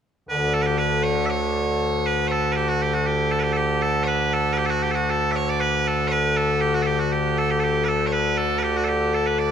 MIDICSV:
0, 0, Header, 1, 2, 480
1, 0, Start_track
1, 0, Key_signature, 2, "major"
1, 0, Tempo, 508044
1, 245, Time_signature, 2, 2, 24, 8
1, 8989, End_track
2, 0, Start_track
2, 0, Title_t, "Bagpipes"
2, 0, Program_c, 0, 109
2, 273, Note_on_c, 0, 38, 89
2, 273, Note_on_c, 0, 50, 89
2, 273, Note_on_c, 0, 71, 73
2, 507, Note_off_c, 0, 71, 0
2, 507, Note_on_c, 0, 69, 78
2, 584, Note_off_c, 0, 69, 0
2, 584, Note_on_c, 0, 71, 65
2, 623, Note_off_c, 0, 71, 0
2, 623, Note_on_c, 0, 67, 65
2, 737, Note_off_c, 0, 67, 0
2, 737, Note_on_c, 0, 71, 77
2, 974, Note_off_c, 0, 71, 0
2, 974, Note_on_c, 0, 73, 76
2, 1186, Note_off_c, 0, 73, 0
2, 1186, Note_on_c, 0, 76, 80
2, 1224, Note_off_c, 0, 76, 0
2, 1224, Note_on_c, 0, 73, 80
2, 1948, Note_off_c, 0, 73, 0
2, 1948, Note_on_c, 0, 71, 65
2, 2150, Note_off_c, 0, 71, 0
2, 2150, Note_on_c, 0, 73, 80
2, 2188, Note_off_c, 0, 73, 0
2, 2188, Note_on_c, 0, 69, 80
2, 2381, Note_off_c, 0, 69, 0
2, 2381, Note_on_c, 0, 71, 70
2, 2417, Note_off_c, 0, 71, 0
2, 2417, Note_on_c, 0, 67, 70
2, 2535, Note_off_c, 0, 67, 0
2, 2535, Note_on_c, 0, 66, 70
2, 2664, Note_off_c, 0, 66, 0
2, 2664, Note_on_c, 0, 67, 73
2, 2776, Note_off_c, 0, 67, 0
2, 2776, Note_on_c, 0, 66, 63
2, 2892, Note_off_c, 0, 66, 0
2, 2892, Note_on_c, 0, 67, 72
2, 3127, Note_off_c, 0, 67, 0
2, 3127, Note_on_c, 0, 69, 76
2, 3207, Note_off_c, 0, 69, 0
2, 3207, Note_on_c, 0, 71, 70
2, 3239, Note_off_c, 0, 71, 0
2, 3239, Note_on_c, 0, 67, 70
2, 3329, Note_off_c, 0, 67, 0
2, 3329, Note_on_c, 0, 69, 78
2, 3368, Note_off_c, 0, 69, 0
2, 3368, Note_on_c, 0, 67, 78
2, 3607, Note_off_c, 0, 67, 0
2, 3607, Note_on_c, 0, 69, 84
2, 3812, Note_off_c, 0, 69, 0
2, 3812, Note_on_c, 0, 73, 73
2, 3849, Note_off_c, 0, 73, 0
2, 3849, Note_on_c, 0, 71, 73
2, 4094, Note_off_c, 0, 71, 0
2, 4094, Note_on_c, 0, 69, 87
2, 4281, Note_off_c, 0, 69, 0
2, 4281, Note_on_c, 0, 71, 82
2, 4321, Note_off_c, 0, 71, 0
2, 4321, Note_on_c, 0, 67, 82
2, 4398, Note_off_c, 0, 67, 0
2, 4398, Note_on_c, 0, 69, 81
2, 4439, Note_off_c, 0, 69, 0
2, 4439, Note_on_c, 0, 66, 81
2, 4560, Note_off_c, 0, 66, 0
2, 4560, Note_on_c, 0, 67, 75
2, 4637, Note_off_c, 0, 67, 0
2, 4637, Note_on_c, 0, 69, 70
2, 4677, Note_off_c, 0, 69, 0
2, 4677, Note_on_c, 0, 66, 70
2, 4816, Note_off_c, 0, 66, 0
2, 4816, Note_on_c, 0, 69, 73
2, 5022, Note_off_c, 0, 69, 0
2, 5022, Note_on_c, 0, 76, 91
2, 5060, Note_off_c, 0, 76, 0
2, 5060, Note_on_c, 0, 73, 91
2, 5191, Note_off_c, 0, 73, 0
2, 5191, Note_on_c, 0, 74, 86
2, 5294, Note_off_c, 0, 74, 0
2, 5294, Note_on_c, 0, 71, 81
2, 5550, Note_off_c, 0, 71, 0
2, 5550, Note_on_c, 0, 69, 75
2, 5742, Note_off_c, 0, 69, 0
2, 5742, Note_on_c, 0, 73, 86
2, 5778, Note_off_c, 0, 73, 0
2, 5778, Note_on_c, 0, 71, 86
2, 6015, Note_off_c, 0, 71, 0
2, 6015, Note_on_c, 0, 69, 81
2, 6240, Note_off_c, 0, 69, 0
2, 6240, Note_on_c, 0, 67, 82
2, 6373, Note_off_c, 0, 67, 0
2, 6373, Note_on_c, 0, 66, 75
2, 6446, Note_off_c, 0, 66, 0
2, 6446, Note_on_c, 0, 69, 77
2, 6479, Note_off_c, 0, 69, 0
2, 6479, Note_on_c, 0, 67, 77
2, 6607, Note_off_c, 0, 67, 0
2, 6607, Note_on_c, 0, 66, 64
2, 6728, Note_off_c, 0, 66, 0
2, 6728, Note_on_c, 0, 67, 73
2, 6973, Note_off_c, 0, 67, 0
2, 6973, Note_on_c, 0, 69, 88
2, 7088, Note_off_c, 0, 69, 0
2, 7088, Note_on_c, 0, 67, 71
2, 7175, Note_off_c, 0, 67, 0
2, 7175, Note_on_c, 0, 69, 76
2, 7211, Note_off_c, 0, 69, 0
2, 7211, Note_on_c, 0, 67, 76
2, 7409, Note_off_c, 0, 67, 0
2, 7409, Note_on_c, 0, 71, 72
2, 7447, Note_off_c, 0, 71, 0
2, 7447, Note_on_c, 0, 69, 72
2, 7621, Note_off_c, 0, 69, 0
2, 7621, Note_on_c, 0, 73, 53
2, 7676, Note_off_c, 0, 73, 0
2, 7676, Note_on_c, 0, 71, 75
2, 7911, Note_off_c, 0, 71, 0
2, 7911, Note_on_c, 0, 69, 81
2, 8112, Note_off_c, 0, 69, 0
2, 8112, Note_on_c, 0, 71, 80
2, 8153, Note_off_c, 0, 71, 0
2, 8153, Note_on_c, 0, 67, 80
2, 8284, Note_off_c, 0, 67, 0
2, 8284, Note_on_c, 0, 66, 74
2, 8352, Note_off_c, 0, 66, 0
2, 8352, Note_on_c, 0, 69, 72
2, 8388, Note_off_c, 0, 69, 0
2, 8388, Note_on_c, 0, 67, 72
2, 8635, Note_off_c, 0, 67, 0
2, 8635, Note_on_c, 0, 69, 66
2, 8751, Note_off_c, 0, 69, 0
2, 8751, Note_on_c, 0, 71, 62
2, 8869, Note_off_c, 0, 71, 0
2, 8869, Note_on_c, 0, 74, 76
2, 8989, Note_off_c, 0, 38, 0
2, 8989, Note_off_c, 0, 50, 0
2, 8989, Note_off_c, 0, 74, 0
2, 8989, End_track
0, 0, End_of_file